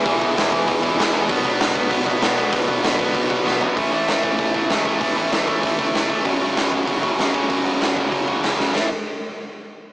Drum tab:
HH |o-o-o-o-|o-o-o-o-|o-o-o---|o-o-o-o-|
SD |--o---o-|--o---o-|--o---o-|--o---o-|
FT |--------|--------|-------o|--------|
BD |oo-ooo--|oo-ooo--|oo-ooo--|o--ooo-o|

HH |o-o-o-o-|o-o-o-o-|o-o-o-o-|--------|
SD |--o---o-|--o---o-|--o---oo|o-------|
FT |--------|--------|--------|--------|
BD |o--ooo-o|o--ooo-o|o--ooo--|--------|